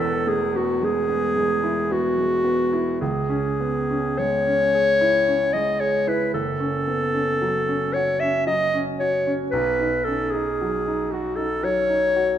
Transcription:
Already playing: E1 E2
0.00 B3 A4
0.27 A3 G#4
0.55 B3 F#4
0.82 G#3 G#4
1.09 B3
1.36 G#3
1.64 E4
1.91 B3 F#4
2.18 G#3
2.44 B3
2.73 E4
3.01 C#2 G#4
3.29 C#4
3.60 B3
3.90 C#4
4.19 G#3 C#5
4.47 C#4
4.75 G#4
5.01 E4
5.28 C#4
5.54 G#3 D#5
5.80 G#4 C#5
6.07 E4 B4
6.34 F#1 A4
6.60 C#4
6.87 B3
7.14 C#4
7.42 F#3
7.69 C#4
7.93 F#4 C#5
8.20 C#4 E5
8.47 F#3 D#5
8.74 C#4
9.00 F#4 C#5
9.27 C#4
9.51 B1 B4
9.79 D#4
10.05 C#4 A4
10.31 D#4 G#4
10.61 F#3
10.88 D#4
11.11 F#4
11.36 D#4 A4
11.63 F#3 C#5
11.90 D#4
12.16 F#4

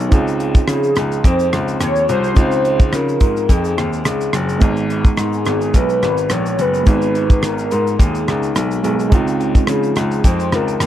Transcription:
Already playing: G#2 D#3 B3 D#4
0.00 shaker
0.10 C#2 C#3 C4 D#4 F4, kick, closed hi-hat, shaker
0.14 G#4
0.27 shaker
0.40 G#3, closed hi-hat, shaker
0.55 kick, shaker
0.57 shaker
0.68 C#3 F3 G#4, cross-stick, closed hi-hat, shaker
0.83 shaker
0.96 C#2 G#3, cross-stick, closed hi-hat, shaker
1.12 shaker
1.24 F2 C4 C5, kick, closed hi-hat, shaker
1.39 shaker
1.53 C#2 F3, cross-stick, closed hi-hat, shaker
1.68 shaker
1.80 D#2 G#3 C#5, cross-stick, closed hi-hat, shaker
1.96 shaker
2.09 C2 F3 C5, closed hi-hat, shaker
2.24 shaker
2.34 C#2 C#3 C4 D#4 F4, kick, closed hi-hat, shaker
2.39 G#4
2.52 shaker
2.65 G#3, closed hi-hat, shaker
2.80 kick, shaker
2.93 C#3 F3 A#4, cross-stick, closed hi-hat, shaker
3.09 shaker
3.20 G#2 G#3, kick, closed hi-hat, shaker
3.37 shaker
3.49 F2 C4 G#4, kick, closed hi-hat, shaker
3.65 shaker
3.78 D#2 F3, cross-stick, closed hi-hat, shaker
3.93 shaker
4.05 C#2 G#3, cross-stick, closed hi-hat, shaker
4.21 shaker
4.33 F#1 F3, cross-stick, closed hi-hat, shaker
4.49 shaker
4.59 G#1 G#2 G#3 B3 D#4, kick, closed hi-hat, shaker
4.63 D#4 G#4
4.77 shaker
4.90 B3, closed hi-hat, shaker
5.05 kick, shaker
5.17 G#2 D#3 G#4, cross-stick, closed hi-hat, shaker
5.33 shaker
5.45 G#1 B3, cross-stick, closed hi-hat, shaker
5.61 shaker
5.74 B1 D#4 B4, kick, closed hi-hat, shaker
5.89 shaker
6.03 G#1 D#3, cross-stick, closed hi-hat, shaker
6.17 shaker
6.30 A#1 B3 C#5, cross-stick, closed hi-hat, shaker
6.46 shaker
6.59 F#1 D#3 B4, closed hi-hat, shaker
6.74 shaker
6.84 G#1 G#2 G#3 B3 D#4, kick, closed hi-hat, shaker
6.89 G#4
7.02 shaker
7.15 B3, closed hi-hat, shaker
7.30 kick, shaker
7.43 D#3 A#4, cross-stick, closed hi-hat, shaker
7.58 shaker
7.71 G#2 B3, closed hi-hat, shaker
7.87 shaker
7.99 D#2 D#4 G#4, kick, closed hi-hat, shaker
8.15 shaker
8.28 C#2 D#3, cross-stick, closed hi-hat, shaker
8.43 shaker
8.55 B1 B3, cross-stick, closed hi-hat, shaker
8.71 shaker
8.83 B1 D#3 G#3 B3 D#4 G#4, closed hi-hat, shaker
8.99 shaker
9.10 C#2 C#3 G#3 C4 D#4, kick, closed hi-hat, shaker
9.15 F4
9.27 shaker
9.41 G#3, closed hi-hat, shaker
9.55 kick, shaker
9.67 C#3 F3, cross-stick, closed hi-hat, shaker
9.72 G#4
9.83 shaker
9.96 C#2 G#3, cross-stick, closed hi-hat, shaker
9.97 shaker
10.11 shaker
10.13 shaker
10.24 F2 C4 C5, kick, closed hi-hat, shaker
10.40 shaker
10.52 C#2 F3 A#4, cross-stick, closed hi-hat, shaker
10.68 shaker
10.80 D#2 G#3, cross-stick, closed hi-hat, shaker

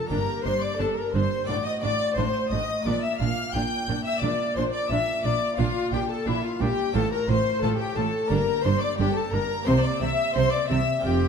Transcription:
Already playing: A4 A5
0.07 A#3 D4 G4
0.11 G1 G2 A#4 A#5
0.45 G1 G2 D4 C5 C6
0.62 D5 D6
0.80 G1 G2 D4 A4 A5
0.97 A#4 A#5
1.14 G1 G2 D4 C5 C6
1.44 C4 D4 F#4 D5
1.48 A1 A2 D4 D5 D6
1.65 D#5 D#6
1.82 A1 A2 D4 D5 D6
2.16 A1 A2 D4 C5 C6
2.50 A1 A2 D4 D#5 D#6
2.81 A#3 D4 D5
2.86 A#1 A#2 D4 D5 D6
3.02 E5 E6
3.19 A#1 A#2 D4 F5 F6
3.53 A#1 A#2 D4 G5 G6
3.88 A#1 A#2 D4
4.04 E5 E6
4.21 A#1 A#2 D4 D5 D6
4.56 A#1 A#2 D4 C5 C6
4.73 D5 D6
4.90 A#1 A#2 D4 E5 E6
5.24 A#1 A#2 D4 D5 D6
5.56 A#1 A#2 D4 F4 F5
5.92 A#1 A#2 D4 G4 G5
6.09 A4 A5
6.26 A#1 A#2 D4 E4 E5
6.44 F4 F5
6.61 A#1 A#2 D4 G4 G5
6.92 A1 A2 C4 F4 A4 A5
7.12 A#4 A#5
7.28 A1 A2 F4 C5 C6
7.62 A1 A2 F4 A4 A5
7.80 G4 G5
7.96 A1 A2 F4 A4 A5
8.26 A#3 D4 G4
8.31 G1 G2 D4 A#4 A#5
8.64 G1 G2 D4 C5 C6
8.81 D5 D6
8.98 G1 G2 D4 G4 G5
9.15 A4 A5
9.32 G1 G2 D4 A#4 A#5
9.62 A#3 C4 G4
9.67 C2 C3 C4 C5 C6
9.84 D5 D6
10.01 C2 C3 C4 E5 E6
10.35 C2 C3 C4 C5 C6
10.52 D5 D6
10.69 C2 C3 C4 E5 E6
10.99 C4 F4
11.04 F1 F2 C4 G4 G5

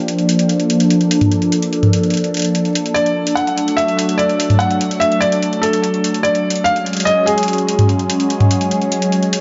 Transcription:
Already playing: F3 A#3 D4
0.08 A4, closed hi-hat
0.19 closed hi-hat
0.29 closed hi-hat
0.39 closed hi-hat
0.49 closed hi-hat
0.60 closed hi-hat
0.70 closed hi-hat
0.80 closed hi-hat
0.90 closed hi-hat
1.01 closed hi-hat
1.11 closed hi-hat
1.21 closed hi-hat, mid tom
1.32 closed hi-hat
1.42 closed hi-hat
1.52 closed hi-hat
1.62 closed hi-hat
1.73 closed hi-hat
1.83 closed hi-hat, mid tom
1.93 closed hi-hat
2.03 closed hi-hat
2.10 closed hi-hat
2.14 closed hi-hat
2.17 closed hi-hat
2.24 closed hi-hat
2.34 closed hi-hat
2.37 closed hi-hat
2.39 closed hi-hat
2.42 closed hi-hat
2.45 closed hi-hat
2.55 closed hi-hat
2.65 closed hi-hat
2.75 closed hi-hat
2.86 closed hi-hat
2.94 D5, closed hi-hat
3.06 closed hi-hat
3.27 closed hi-hat
3.35 F#3 A3 F#5, closed hi-hat
3.47 closed hi-hat
3.58 closed hi-hat
3.68 closed hi-hat
3.77 E5, closed hi-hat
3.88 closed hi-hat
3.99 closed hi-hat
4.09 closed hi-hat
4.18 D5, closed hi-hat
4.29 closed hi-hat
4.40 closed hi-hat
4.50 closed hi-hat, mid tom
4.59 F#5, closed hi-hat
4.71 closed hi-hat
4.81 closed hi-hat
4.91 closed hi-hat
5.00 E5, closed hi-hat
5.12 closed hi-hat
5.21 D5, closed hi-hat
5.32 closed hi-hat
5.43 closed hi-hat
5.53 closed hi-hat
5.62 A4, closed hi-hat
5.73 closed hi-hat
5.84 closed hi-hat
5.94 closed hi-hat
6.04 closed hi-hat
6.14 closed hi-hat
6.23 D5, closed hi-hat
6.35 closed hi-hat
6.50 closed hi-hat
6.56 closed hi-hat
6.64 F#3 G#3 C#4 G#4 F5, closed hi-hat
6.76 closed hi-hat
6.86 closed hi-hat
6.93 closed hi-hat
6.97 closed hi-hat
7.00 closed hi-hat
7.05 D#5, closed hi-hat
7.26 G#4, closed hi-hat
7.38 closed hi-hat
7.43 closed hi-hat
7.48 closed hi-hat
7.53 closed hi-hat
7.58 closed hi-hat
7.69 closed hi-hat
7.79 closed hi-hat, mid tom
7.89 closed hi-hat
7.99 closed hi-hat
8.10 closed hi-hat
8.20 closed hi-hat
8.30 closed hi-hat
8.40 closed hi-hat, mid tom
8.51 closed hi-hat
8.61 closed hi-hat
8.71 closed hi-hat
8.82 closed hi-hat
8.92 closed hi-hat
9.02 closed hi-hat
9.12 closed hi-hat
9.23 closed hi-hat
9.33 closed hi-hat

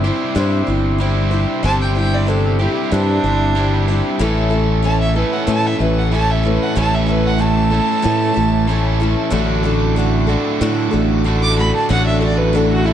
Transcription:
Already playing: G1 G2
0.04 G3 C4 D4 E4 G4 C5
0.35 G2 G3 D4 E4 C5
0.67 G1 D4 E4 C5
0.98 G3 C4 D4 E4 C5
1.02 G4
1.31 D4 E4 C5
1.63 G1 G3 C4 D4 E4 G4 C5 A5
1.81 G5
1.95 D4 E4 C5 G5
2.14 D5
2.27 G3 D4 E4 A4 C5
2.45 G4
2.59 G3 C4 D4 E4 G4 C5
2.91 G2 G3 D4 E4 C5
3.24 G1 D4 E4 C5
3.55 G3 C4 D4 E4 C5
3.59 G4
3.88 D4 E4 C5
4.18 A1 A2 E3 A3 C#4 E4 A4 C#5 E5 A5
4.50 A3 C#4 E4 A4
4.83 A3 C#4 E4 A4 A5
5.01 E5
5.14 A3 C#4 E4 A4 B4
5.19 A2 E3
5.33 F#5
5.47 A2 E3 A3 C#4 E4 A4 A5
5.67 E5
5.79 A1 A3 C#4 E4 A4 B4
5.98 F#5
6.12 A2 E3 A3 C#4 E4 A4 A5
6.31 E5
6.43 A3 C#4 E4 A4 B4
6.62 F#5
6.75 A1 A2 E3 A3 C#4 E4 A4 A5
6.94 E5
7.07 A3 C#4 E4 A4 B4
7.27 F#5
7.38 A3 C#4 E4 A4 A5
7.71 A2 E3 A3 C#4 E4 A4
8.02 A2 E3 A3 C#4 E4 A4
8.34 A1 A3 C#4 E4 A4
8.67 A2 E3 A3 C#4 E4 A4
9.00 A3 C#4 E4 A4
9.30 A1 A2 D3 A3 D4 F#4 A4 D5 F#5
9.63 A3 D4 F#4 A4
9.96 A3 D4 F#4 A4
10.27 D3 A3 D4 F#4 A4
10.31 A2
10.61 A2 D3 A3 D4 F#4 A4
10.91 A1 A3 D4 F#4 A4
11.24 A2 D3 A3 D4 F#4 A4
11.42 D6
11.57 A3 D4 F#4 A4 B5
11.76 A5
11.89 A1 A2 D3 A3 D4 F#4 A4 F#5
12.06 E5
12.21 A3 D4 F#4 A4 D5
12.38 B4
12.53 A3 D4 F#4 A4
12.70 F#4
12.85 A2 D3 A3 D4 E4 F#4 A4

